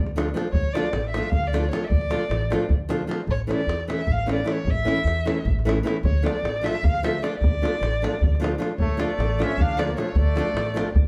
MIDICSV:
0, 0, Header, 1, 6, 480
1, 0, Start_track
1, 0, Key_signature, -1, "minor"
1, 0, Tempo, 392670
1, 645, Time_signature, 7, 3, 24, 8
1, 13541, End_track
2, 0, Start_track
2, 0, Title_t, "Violin"
2, 0, Program_c, 0, 40
2, 635, Note_on_c, 0, 73, 91
2, 890, Note_on_c, 0, 74, 86
2, 909, Note_off_c, 0, 73, 0
2, 1326, Note_off_c, 0, 74, 0
2, 1333, Note_on_c, 0, 76, 84
2, 1581, Note_on_c, 0, 77, 93
2, 1599, Note_off_c, 0, 76, 0
2, 1800, Note_on_c, 0, 74, 78
2, 1819, Note_off_c, 0, 77, 0
2, 2057, Note_on_c, 0, 73, 72
2, 2075, Note_off_c, 0, 74, 0
2, 2247, Note_on_c, 0, 76, 55
2, 2265, Note_off_c, 0, 73, 0
2, 2289, Note_on_c, 0, 74, 88
2, 2308, Note_off_c, 0, 76, 0
2, 3287, Note_off_c, 0, 74, 0
2, 4038, Note_on_c, 0, 73, 86
2, 4147, Note_off_c, 0, 73, 0
2, 4303, Note_on_c, 0, 74, 86
2, 4740, Note_off_c, 0, 74, 0
2, 4797, Note_on_c, 0, 76, 84
2, 5032, Note_on_c, 0, 77, 88
2, 5050, Note_off_c, 0, 76, 0
2, 5255, Note_off_c, 0, 77, 0
2, 5302, Note_on_c, 0, 74, 79
2, 5522, Note_on_c, 0, 73, 84
2, 5540, Note_off_c, 0, 74, 0
2, 5734, Note_on_c, 0, 76, 101
2, 5752, Note_off_c, 0, 73, 0
2, 6690, Note_off_c, 0, 76, 0
2, 7388, Note_on_c, 0, 73, 85
2, 7633, Note_on_c, 0, 74, 88
2, 7651, Note_off_c, 0, 73, 0
2, 8112, Note_on_c, 0, 76, 91
2, 8131, Note_off_c, 0, 74, 0
2, 8356, Note_on_c, 0, 77, 93
2, 8374, Note_off_c, 0, 76, 0
2, 8609, Note_on_c, 0, 76, 81
2, 8628, Note_off_c, 0, 77, 0
2, 8832, Note_on_c, 0, 74, 75
2, 8850, Note_off_c, 0, 76, 0
2, 9006, Note_off_c, 0, 74, 0
2, 9013, Note_on_c, 0, 74, 103
2, 10435, Note_off_c, 0, 74, 0
2, 10738, Note_on_c, 0, 73, 82
2, 11009, Note_on_c, 0, 74, 86
2, 11028, Note_off_c, 0, 73, 0
2, 11516, Note_on_c, 0, 76, 92
2, 11534, Note_off_c, 0, 74, 0
2, 11744, Note_on_c, 0, 77, 100
2, 11763, Note_off_c, 0, 76, 0
2, 11966, Note_on_c, 0, 74, 87
2, 11984, Note_off_c, 0, 77, 0
2, 12174, Note_off_c, 0, 74, 0
2, 12181, Note_on_c, 0, 73, 80
2, 12431, Note_on_c, 0, 74, 98
2, 12450, Note_off_c, 0, 73, 0
2, 13393, Note_off_c, 0, 74, 0
2, 13541, End_track
3, 0, Start_track
3, 0, Title_t, "Nylon-string guitar"
3, 0, Program_c, 1, 24
3, 193, Note_on_c, 1, 53, 66
3, 202, Note_on_c, 1, 57, 63
3, 210, Note_on_c, 1, 65, 77
3, 218, Note_on_c, 1, 62, 67
3, 335, Note_off_c, 1, 53, 0
3, 339, Note_off_c, 1, 57, 0
3, 343, Note_off_c, 1, 65, 0
3, 347, Note_off_c, 1, 62, 0
3, 416, Note_on_c, 1, 53, 65
3, 425, Note_on_c, 1, 57, 58
3, 433, Note_on_c, 1, 62, 62
3, 444, Note_on_c, 1, 65, 79
3, 561, Note_off_c, 1, 53, 0
3, 564, Note_off_c, 1, 57, 0
3, 569, Note_off_c, 1, 62, 0
3, 575, Note_off_c, 1, 65, 0
3, 911, Note_on_c, 1, 53, 65
3, 921, Note_on_c, 1, 57, 56
3, 930, Note_on_c, 1, 62, 56
3, 936, Note_on_c, 1, 65, 72
3, 1054, Note_off_c, 1, 53, 0
3, 1059, Note_off_c, 1, 57, 0
3, 1063, Note_off_c, 1, 62, 0
3, 1066, Note_off_c, 1, 65, 0
3, 1406, Note_on_c, 1, 53, 47
3, 1408, Note_on_c, 1, 57, 51
3, 1422, Note_on_c, 1, 62, 43
3, 1432, Note_on_c, 1, 65, 56
3, 1546, Note_off_c, 1, 53, 0
3, 1546, Note_off_c, 1, 57, 0
3, 1554, Note_off_c, 1, 62, 0
3, 1559, Note_off_c, 1, 65, 0
3, 1870, Note_on_c, 1, 53, 61
3, 1878, Note_on_c, 1, 57, 53
3, 1887, Note_on_c, 1, 62, 56
3, 1895, Note_on_c, 1, 65, 65
3, 2015, Note_off_c, 1, 53, 0
3, 2019, Note_off_c, 1, 57, 0
3, 2023, Note_off_c, 1, 62, 0
3, 2027, Note_off_c, 1, 65, 0
3, 2097, Note_on_c, 1, 53, 48
3, 2103, Note_on_c, 1, 57, 51
3, 2107, Note_on_c, 1, 62, 47
3, 2120, Note_on_c, 1, 65, 64
3, 2243, Note_off_c, 1, 53, 0
3, 2244, Note_off_c, 1, 57, 0
3, 2247, Note_off_c, 1, 62, 0
3, 2254, Note_off_c, 1, 65, 0
3, 2568, Note_on_c, 1, 53, 58
3, 2578, Note_on_c, 1, 57, 53
3, 2579, Note_on_c, 1, 62, 50
3, 2587, Note_on_c, 1, 65, 65
3, 2724, Note_off_c, 1, 53, 0
3, 2726, Note_off_c, 1, 57, 0
3, 2729, Note_off_c, 1, 62, 0
3, 2731, Note_off_c, 1, 65, 0
3, 3060, Note_on_c, 1, 53, 58
3, 3073, Note_on_c, 1, 57, 60
3, 3083, Note_on_c, 1, 62, 57
3, 3091, Note_on_c, 1, 65, 66
3, 3213, Note_off_c, 1, 53, 0
3, 3220, Note_off_c, 1, 57, 0
3, 3225, Note_off_c, 1, 62, 0
3, 3229, Note_off_c, 1, 65, 0
3, 3529, Note_on_c, 1, 53, 73
3, 3530, Note_on_c, 1, 57, 60
3, 3541, Note_on_c, 1, 62, 61
3, 3552, Note_on_c, 1, 65, 82
3, 3684, Note_off_c, 1, 57, 0
3, 3685, Note_off_c, 1, 53, 0
3, 3691, Note_off_c, 1, 62, 0
3, 3696, Note_off_c, 1, 65, 0
3, 3757, Note_on_c, 1, 53, 63
3, 3766, Note_on_c, 1, 57, 52
3, 3772, Note_on_c, 1, 62, 50
3, 3775, Note_on_c, 1, 65, 69
3, 3914, Note_off_c, 1, 53, 0
3, 3916, Note_off_c, 1, 57, 0
3, 3921, Note_off_c, 1, 62, 0
3, 3921, Note_off_c, 1, 65, 0
3, 4242, Note_on_c, 1, 52, 53
3, 4251, Note_on_c, 1, 57, 56
3, 4261, Note_on_c, 1, 61, 55
3, 4268, Note_on_c, 1, 64, 61
3, 4402, Note_off_c, 1, 52, 0
3, 4403, Note_off_c, 1, 57, 0
3, 4410, Note_off_c, 1, 61, 0
3, 4413, Note_off_c, 1, 64, 0
3, 4738, Note_on_c, 1, 52, 56
3, 4746, Note_on_c, 1, 57, 42
3, 4746, Note_on_c, 1, 61, 44
3, 4759, Note_on_c, 1, 64, 57
3, 4893, Note_off_c, 1, 52, 0
3, 4896, Note_off_c, 1, 61, 0
3, 4897, Note_off_c, 1, 57, 0
3, 4903, Note_off_c, 1, 64, 0
3, 5209, Note_on_c, 1, 52, 58
3, 5215, Note_on_c, 1, 57, 53
3, 5222, Note_on_c, 1, 61, 61
3, 5232, Note_on_c, 1, 64, 65
3, 5365, Note_off_c, 1, 52, 0
3, 5368, Note_off_c, 1, 57, 0
3, 5371, Note_off_c, 1, 61, 0
3, 5376, Note_off_c, 1, 64, 0
3, 5433, Note_on_c, 1, 52, 52
3, 5444, Note_on_c, 1, 57, 50
3, 5449, Note_on_c, 1, 64, 59
3, 5450, Note_on_c, 1, 61, 44
3, 5591, Note_off_c, 1, 52, 0
3, 5597, Note_off_c, 1, 57, 0
3, 5598, Note_off_c, 1, 64, 0
3, 5599, Note_off_c, 1, 61, 0
3, 5923, Note_on_c, 1, 52, 55
3, 5925, Note_on_c, 1, 57, 55
3, 5933, Note_on_c, 1, 61, 56
3, 5949, Note_on_c, 1, 64, 67
3, 6081, Note_off_c, 1, 52, 0
3, 6081, Note_off_c, 1, 57, 0
3, 6086, Note_off_c, 1, 61, 0
3, 6094, Note_off_c, 1, 64, 0
3, 6420, Note_on_c, 1, 52, 61
3, 6429, Note_on_c, 1, 57, 63
3, 6432, Note_on_c, 1, 61, 50
3, 6439, Note_on_c, 1, 64, 58
3, 6575, Note_off_c, 1, 52, 0
3, 6577, Note_off_c, 1, 57, 0
3, 6581, Note_off_c, 1, 61, 0
3, 6581, Note_off_c, 1, 64, 0
3, 6909, Note_on_c, 1, 57, 68
3, 6910, Note_on_c, 1, 52, 70
3, 6915, Note_on_c, 1, 61, 67
3, 6928, Note_on_c, 1, 64, 84
3, 7055, Note_off_c, 1, 57, 0
3, 7056, Note_off_c, 1, 52, 0
3, 7059, Note_off_c, 1, 61, 0
3, 7065, Note_off_c, 1, 64, 0
3, 7129, Note_on_c, 1, 52, 65
3, 7138, Note_on_c, 1, 57, 59
3, 7141, Note_on_c, 1, 61, 50
3, 7156, Note_on_c, 1, 64, 71
3, 7280, Note_off_c, 1, 52, 0
3, 7282, Note_off_c, 1, 57, 0
3, 7286, Note_off_c, 1, 61, 0
3, 7293, Note_off_c, 1, 64, 0
3, 7608, Note_on_c, 1, 53, 58
3, 7615, Note_on_c, 1, 57, 57
3, 7618, Note_on_c, 1, 62, 56
3, 7624, Note_on_c, 1, 65, 63
3, 7765, Note_off_c, 1, 57, 0
3, 7766, Note_off_c, 1, 53, 0
3, 7769, Note_off_c, 1, 62, 0
3, 7772, Note_off_c, 1, 65, 0
3, 8086, Note_on_c, 1, 53, 55
3, 8098, Note_on_c, 1, 57, 46
3, 8104, Note_on_c, 1, 62, 51
3, 8114, Note_on_c, 1, 65, 66
3, 8248, Note_off_c, 1, 53, 0
3, 8254, Note_off_c, 1, 57, 0
3, 8257, Note_off_c, 1, 62, 0
3, 8262, Note_off_c, 1, 65, 0
3, 8595, Note_on_c, 1, 53, 68
3, 8602, Note_on_c, 1, 57, 57
3, 8607, Note_on_c, 1, 62, 50
3, 8623, Note_on_c, 1, 65, 68
3, 8739, Note_off_c, 1, 53, 0
3, 8743, Note_off_c, 1, 57, 0
3, 8743, Note_off_c, 1, 62, 0
3, 8753, Note_off_c, 1, 65, 0
3, 8829, Note_on_c, 1, 53, 47
3, 8839, Note_on_c, 1, 57, 47
3, 8846, Note_on_c, 1, 62, 50
3, 8856, Note_on_c, 1, 65, 53
3, 8970, Note_off_c, 1, 53, 0
3, 8975, Note_off_c, 1, 57, 0
3, 8979, Note_off_c, 1, 62, 0
3, 8984, Note_off_c, 1, 65, 0
3, 9312, Note_on_c, 1, 53, 57
3, 9316, Note_on_c, 1, 57, 56
3, 9324, Note_on_c, 1, 62, 53
3, 9329, Note_on_c, 1, 65, 68
3, 9458, Note_off_c, 1, 53, 0
3, 9458, Note_off_c, 1, 57, 0
3, 9463, Note_off_c, 1, 62, 0
3, 9464, Note_off_c, 1, 65, 0
3, 9804, Note_on_c, 1, 53, 58
3, 9810, Note_on_c, 1, 57, 60
3, 9815, Note_on_c, 1, 62, 53
3, 9831, Note_on_c, 1, 65, 57
3, 9948, Note_off_c, 1, 53, 0
3, 9950, Note_off_c, 1, 57, 0
3, 9950, Note_off_c, 1, 62, 0
3, 9960, Note_off_c, 1, 65, 0
3, 10264, Note_on_c, 1, 53, 71
3, 10270, Note_on_c, 1, 57, 60
3, 10277, Note_on_c, 1, 62, 63
3, 10288, Note_on_c, 1, 65, 78
3, 10414, Note_off_c, 1, 53, 0
3, 10415, Note_off_c, 1, 57, 0
3, 10420, Note_off_c, 1, 62, 0
3, 10426, Note_off_c, 1, 65, 0
3, 10491, Note_on_c, 1, 53, 57
3, 10496, Note_on_c, 1, 57, 58
3, 10498, Note_on_c, 1, 62, 59
3, 10510, Note_on_c, 1, 65, 72
3, 10641, Note_off_c, 1, 57, 0
3, 10642, Note_off_c, 1, 53, 0
3, 10645, Note_off_c, 1, 62, 0
3, 10651, Note_off_c, 1, 65, 0
3, 10966, Note_on_c, 1, 53, 59
3, 10974, Note_on_c, 1, 57, 59
3, 10980, Note_on_c, 1, 62, 55
3, 10992, Note_on_c, 1, 65, 70
3, 11124, Note_off_c, 1, 53, 0
3, 11126, Note_off_c, 1, 57, 0
3, 11130, Note_off_c, 1, 62, 0
3, 11136, Note_off_c, 1, 65, 0
3, 11473, Note_on_c, 1, 53, 54
3, 11479, Note_on_c, 1, 57, 45
3, 11486, Note_on_c, 1, 62, 51
3, 11491, Note_on_c, 1, 65, 52
3, 11621, Note_off_c, 1, 53, 0
3, 11624, Note_off_c, 1, 57, 0
3, 11626, Note_off_c, 1, 62, 0
3, 11629, Note_off_c, 1, 65, 0
3, 11943, Note_on_c, 1, 53, 69
3, 11950, Note_on_c, 1, 57, 57
3, 11959, Note_on_c, 1, 62, 54
3, 11967, Note_on_c, 1, 65, 67
3, 12091, Note_off_c, 1, 53, 0
3, 12095, Note_off_c, 1, 57, 0
3, 12099, Note_off_c, 1, 62, 0
3, 12103, Note_off_c, 1, 65, 0
3, 12186, Note_on_c, 1, 53, 57
3, 12196, Note_on_c, 1, 57, 53
3, 12207, Note_on_c, 1, 62, 53
3, 12218, Note_on_c, 1, 65, 53
3, 12326, Note_off_c, 1, 53, 0
3, 12331, Note_off_c, 1, 57, 0
3, 12337, Note_off_c, 1, 62, 0
3, 12342, Note_off_c, 1, 65, 0
3, 12658, Note_on_c, 1, 53, 69
3, 12674, Note_on_c, 1, 57, 51
3, 12683, Note_on_c, 1, 62, 58
3, 12692, Note_on_c, 1, 65, 79
3, 12806, Note_off_c, 1, 53, 0
3, 12815, Note_off_c, 1, 57, 0
3, 12820, Note_off_c, 1, 62, 0
3, 12822, Note_off_c, 1, 65, 0
3, 13128, Note_on_c, 1, 53, 62
3, 13137, Note_on_c, 1, 57, 61
3, 13147, Note_on_c, 1, 62, 57
3, 13154, Note_on_c, 1, 65, 76
3, 13285, Note_off_c, 1, 53, 0
3, 13289, Note_off_c, 1, 57, 0
3, 13294, Note_off_c, 1, 62, 0
3, 13298, Note_off_c, 1, 65, 0
3, 13541, End_track
4, 0, Start_track
4, 0, Title_t, "Trumpet"
4, 0, Program_c, 2, 56
4, 10769, Note_on_c, 2, 57, 89
4, 11007, Note_off_c, 2, 57, 0
4, 11007, Note_on_c, 2, 57, 78
4, 11524, Note_on_c, 2, 61, 83
4, 11543, Note_off_c, 2, 57, 0
4, 11761, Note_on_c, 2, 62, 80
4, 11780, Note_off_c, 2, 61, 0
4, 12014, Note_on_c, 2, 58, 66
4, 12032, Note_off_c, 2, 62, 0
4, 12211, Note_off_c, 2, 58, 0
4, 12232, Note_on_c, 2, 57, 68
4, 12437, Note_off_c, 2, 57, 0
4, 12437, Note_on_c, 2, 57, 87
4, 13396, Note_off_c, 2, 57, 0
4, 13541, End_track
5, 0, Start_track
5, 0, Title_t, "Upright bass"
5, 0, Program_c, 3, 32
5, 0, Note_on_c, 3, 38, 80
5, 371, Note_off_c, 3, 38, 0
5, 643, Note_on_c, 3, 38, 71
5, 937, Note_off_c, 3, 38, 0
5, 1139, Note_on_c, 3, 33, 81
5, 1431, Note_off_c, 3, 33, 0
5, 1622, Note_on_c, 3, 38, 84
5, 2045, Note_off_c, 3, 38, 0
5, 2321, Note_on_c, 3, 38, 71
5, 2617, Note_off_c, 3, 38, 0
5, 2807, Note_on_c, 3, 33, 86
5, 3103, Note_off_c, 3, 33, 0
5, 3287, Note_on_c, 3, 38, 71
5, 3715, Note_off_c, 3, 38, 0
5, 4000, Note_on_c, 3, 33, 76
5, 4296, Note_off_c, 3, 33, 0
5, 4483, Note_on_c, 3, 40, 68
5, 4781, Note_off_c, 3, 40, 0
5, 4973, Note_on_c, 3, 33, 81
5, 5398, Note_off_c, 3, 33, 0
5, 5678, Note_on_c, 3, 33, 72
5, 5975, Note_off_c, 3, 33, 0
5, 6165, Note_on_c, 3, 40, 85
5, 6462, Note_off_c, 3, 40, 0
5, 6663, Note_on_c, 3, 33, 89
5, 7086, Note_off_c, 3, 33, 0
5, 7375, Note_on_c, 3, 38, 82
5, 7667, Note_off_c, 3, 38, 0
5, 7857, Note_on_c, 3, 33, 77
5, 8151, Note_off_c, 3, 33, 0
5, 8347, Note_on_c, 3, 38, 82
5, 8769, Note_off_c, 3, 38, 0
5, 9058, Note_on_c, 3, 38, 75
5, 9349, Note_off_c, 3, 38, 0
5, 9547, Note_on_c, 3, 33, 77
5, 9838, Note_off_c, 3, 33, 0
5, 10035, Note_on_c, 3, 38, 78
5, 10455, Note_off_c, 3, 38, 0
5, 10736, Note_on_c, 3, 38, 78
5, 11028, Note_off_c, 3, 38, 0
5, 11223, Note_on_c, 3, 33, 81
5, 11514, Note_off_c, 3, 33, 0
5, 11703, Note_on_c, 3, 38, 86
5, 12124, Note_off_c, 3, 38, 0
5, 12409, Note_on_c, 3, 38, 84
5, 12700, Note_off_c, 3, 38, 0
5, 12884, Note_on_c, 3, 33, 83
5, 13179, Note_off_c, 3, 33, 0
5, 13380, Note_on_c, 3, 38, 74
5, 13541, Note_off_c, 3, 38, 0
5, 13541, End_track
6, 0, Start_track
6, 0, Title_t, "Davul"
6, 80, Note_on_c, 9, 37, 27
6, 202, Note_off_c, 9, 37, 0
6, 220, Note_on_c, 9, 37, 77
6, 342, Note_off_c, 9, 37, 0
6, 350, Note_on_c, 9, 37, 23
6, 454, Note_off_c, 9, 37, 0
6, 454, Note_on_c, 9, 37, 60
6, 576, Note_off_c, 9, 37, 0
6, 579, Note_on_c, 9, 37, 25
6, 669, Note_on_c, 9, 43, 81
6, 701, Note_off_c, 9, 37, 0
6, 791, Note_off_c, 9, 43, 0
6, 921, Note_on_c, 9, 37, 68
6, 1036, Note_off_c, 9, 37, 0
6, 1036, Note_on_c, 9, 37, 23
6, 1138, Note_off_c, 9, 37, 0
6, 1138, Note_on_c, 9, 37, 66
6, 1260, Note_off_c, 9, 37, 0
6, 1283, Note_on_c, 9, 37, 23
6, 1396, Note_off_c, 9, 37, 0
6, 1396, Note_on_c, 9, 37, 76
6, 1509, Note_off_c, 9, 37, 0
6, 1509, Note_on_c, 9, 37, 25
6, 1611, Note_on_c, 9, 43, 83
6, 1631, Note_off_c, 9, 37, 0
6, 1733, Note_off_c, 9, 43, 0
6, 1754, Note_on_c, 9, 37, 27
6, 1877, Note_off_c, 9, 37, 0
6, 1885, Note_on_c, 9, 37, 67
6, 1997, Note_off_c, 9, 37, 0
6, 1997, Note_on_c, 9, 37, 23
6, 2117, Note_off_c, 9, 37, 0
6, 2117, Note_on_c, 9, 37, 71
6, 2239, Note_off_c, 9, 37, 0
6, 2240, Note_on_c, 9, 37, 27
6, 2338, Note_on_c, 9, 43, 81
6, 2362, Note_off_c, 9, 37, 0
6, 2460, Note_off_c, 9, 43, 0
6, 2460, Note_on_c, 9, 37, 28
6, 2576, Note_off_c, 9, 37, 0
6, 2576, Note_on_c, 9, 37, 67
6, 2699, Note_off_c, 9, 37, 0
6, 2701, Note_on_c, 9, 37, 23
6, 2823, Note_off_c, 9, 37, 0
6, 2826, Note_on_c, 9, 37, 62
6, 2946, Note_off_c, 9, 37, 0
6, 2946, Note_on_c, 9, 37, 26
6, 3069, Note_off_c, 9, 37, 0
6, 3079, Note_on_c, 9, 37, 74
6, 3181, Note_off_c, 9, 37, 0
6, 3181, Note_on_c, 9, 37, 23
6, 3301, Note_on_c, 9, 43, 72
6, 3303, Note_off_c, 9, 37, 0
6, 3423, Note_off_c, 9, 43, 0
6, 3547, Note_on_c, 9, 37, 69
6, 3670, Note_off_c, 9, 37, 0
6, 3677, Note_on_c, 9, 37, 22
6, 3800, Note_off_c, 9, 37, 0
6, 3806, Note_on_c, 9, 37, 69
6, 3915, Note_off_c, 9, 37, 0
6, 3915, Note_on_c, 9, 37, 24
6, 4015, Note_on_c, 9, 43, 64
6, 4037, Note_off_c, 9, 37, 0
6, 4137, Note_off_c, 9, 43, 0
6, 4288, Note_on_c, 9, 37, 60
6, 4410, Note_off_c, 9, 37, 0
6, 4414, Note_on_c, 9, 37, 24
6, 4516, Note_off_c, 9, 37, 0
6, 4516, Note_on_c, 9, 37, 63
6, 4638, Note_off_c, 9, 37, 0
6, 4639, Note_on_c, 9, 37, 26
6, 4761, Note_off_c, 9, 37, 0
6, 4766, Note_on_c, 9, 37, 71
6, 4875, Note_off_c, 9, 37, 0
6, 4875, Note_on_c, 9, 37, 25
6, 4976, Note_on_c, 9, 43, 79
6, 4997, Note_off_c, 9, 37, 0
6, 5099, Note_off_c, 9, 43, 0
6, 5115, Note_on_c, 9, 37, 24
6, 5237, Note_off_c, 9, 37, 0
6, 5249, Note_on_c, 9, 37, 60
6, 5371, Note_off_c, 9, 37, 0
6, 5375, Note_on_c, 9, 37, 22
6, 5471, Note_off_c, 9, 37, 0
6, 5471, Note_on_c, 9, 37, 64
6, 5593, Note_off_c, 9, 37, 0
6, 5595, Note_on_c, 9, 37, 22
6, 5713, Note_on_c, 9, 43, 80
6, 5717, Note_off_c, 9, 37, 0
6, 5835, Note_off_c, 9, 43, 0
6, 5966, Note_on_c, 9, 37, 57
6, 6088, Note_off_c, 9, 37, 0
6, 6088, Note_on_c, 9, 37, 21
6, 6203, Note_off_c, 9, 37, 0
6, 6203, Note_on_c, 9, 37, 55
6, 6326, Note_off_c, 9, 37, 0
6, 6341, Note_on_c, 9, 37, 22
6, 6447, Note_off_c, 9, 37, 0
6, 6447, Note_on_c, 9, 37, 73
6, 6569, Note_off_c, 9, 37, 0
6, 6579, Note_on_c, 9, 37, 24
6, 6694, Note_on_c, 9, 43, 80
6, 6702, Note_off_c, 9, 37, 0
6, 6816, Note_off_c, 9, 43, 0
6, 6834, Note_on_c, 9, 37, 24
6, 6956, Note_off_c, 9, 37, 0
6, 6956, Note_on_c, 9, 37, 70
6, 7066, Note_off_c, 9, 37, 0
6, 7066, Note_on_c, 9, 37, 21
6, 7177, Note_off_c, 9, 37, 0
6, 7177, Note_on_c, 9, 37, 67
6, 7293, Note_off_c, 9, 37, 0
6, 7293, Note_on_c, 9, 37, 24
6, 7398, Note_on_c, 9, 43, 84
6, 7415, Note_off_c, 9, 37, 0
6, 7520, Note_off_c, 9, 43, 0
6, 7658, Note_on_c, 9, 37, 65
6, 7778, Note_off_c, 9, 37, 0
6, 7778, Note_on_c, 9, 37, 24
6, 7887, Note_off_c, 9, 37, 0
6, 7887, Note_on_c, 9, 37, 62
6, 8009, Note_off_c, 9, 37, 0
6, 8017, Note_on_c, 9, 37, 26
6, 8139, Note_off_c, 9, 37, 0
6, 8143, Note_on_c, 9, 37, 70
6, 8252, Note_off_c, 9, 37, 0
6, 8252, Note_on_c, 9, 37, 24
6, 8363, Note_on_c, 9, 43, 89
6, 8374, Note_off_c, 9, 37, 0
6, 8485, Note_off_c, 9, 43, 0
6, 8489, Note_on_c, 9, 37, 31
6, 8611, Note_off_c, 9, 37, 0
6, 8611, Note_on_c, 9, 37, 77
6, 8733, Note_off_c, 9, 37, 0
6, 8740, Note_on_c, 9, 37, 28
6, 8848, Note_off_c, 9, 37, 0
6, 8848, Note_on_c, 9, 37, 64
6, 8971, Note_off_c, 9, 37, 0
6, 8978, Note_on_c, 9, 37, 27
6, 9092, Note_on_c, 9, 43, 94
6, 9100, Note_off_c, 9, 37, 0
6, 9214, Note_off_c, 9, 43, 0
6, 9223, Note_on_c, 9, 37, 25
6, 9345, Note_off_c, 9, 37, 0
6, 9355, Note_on_c, 9, 37, 63
6, 9477, Note_off_c, 9, 37, 0
6, 9477, Note_on_c, 9, 37, 25
6, 9569, Note_off_c, 9, 37, 0
6, 9569, Note_on_c, 9, 37, 69
6, 9691, Note_off_c, 9, 37, 0
6, 9831, Note_on_c, 9, 37, 71
6, 9945, Note_off_c, 9, 37, 0
6, 9945, Note_on_c, 9, 37, 23
6, 10061, Note_on_c, 9, 43, 85
6, 10068, Note_off_c, 9, 37, 0
6, 10183, Note_off_c, 9, 43, 0
6, 10206, Note_on_c, 9, 37, 28
6, 10320, Note_off_c, 9, 37, 0
6, 10320, Note_on_c, 9, 37, 72
6, 10442, Note_off_c, 9, 37, 0
6, 10535, Note_on_c, 9, 37, 59
6, 10657, Note_off_c, 9, 37, 0
6, 10755, Note_on_c, 9, 43, 82
6, 10877, Note_off_c, 9, 43, 0
6, 10997, Note_on_c, 9, 37, 66
6, 11119, Note_off_c, 9, 37, 0
6, 11126, Note_on_c, 9, 37, 24
6, 11247, Note_off_c, 9, 37, 0
6, 11247, Note_on_c, 9, 37, 59
6, 11370, Note_off_c, 9, 37, 0
6, 11511, Note_on_c, 9, 37, 72
6, 11620, Note_off_c, 9, 37, 0
6, 11620, Note_on_c, 9, 37, 20
6, 11735, Note_on_c, 9, 43, 89
6, 11743, Note_off_c, 9, 37, 0
6, 11857, Note_off_c, 9, 43, 0
6, 11871, Note_on_c, 9, 37, 29
6, 11971, Note_off_c, 9, 37, 0
6, 11971, Note_on_c, 9, 37, 73
6, 12093, Note_off_c, 9, 37, 0
6, 12104, Note_on_c, 9, 37, 25
6, 12203, Note_off_c, 9, 37, 0
6, 12203, Note_on_c, 9, 37, 64
6, 12315, Note_off_c, 9, 37, 0
6, 12315, Note_on_c, 9, 37, 26
6, 12416, Note_on_c, 9, 43, 77
6, 12438, Note_off_c, 9, 37, 0
6, 12538, Note_off_c, 9, 43, 0
6, 12676, Note_on_c, 9, 37, 62
6, 12788, Note_off_c, 9, 37, 0
6, 12788, Note_on_c, 9, 37, 23
6, 12910, Note_off_c, 9, 37, 0
6, 12918, Note_on_c, 9, 37, 74
6, 13038, Note_off_c, 9, 37, 0
6, 13038, Note_on_c, 9, 37, 28
6, 13160, Note_off_c, 9, 37, 0
6, 13168, Note_on_c, 9, 37, 75
6, 13290, Note_off_c, 9, 37, 0
6, 13310, Note_on_c, 9, 37, 25
6, 13393, Note_on_c, 9, 43, 79
6, 13432, Note_off_c, 9, 37, 0
6, 13515, Note_off_c, 9, 43, 0
6, 13541, End_track
0, 0, End_of_file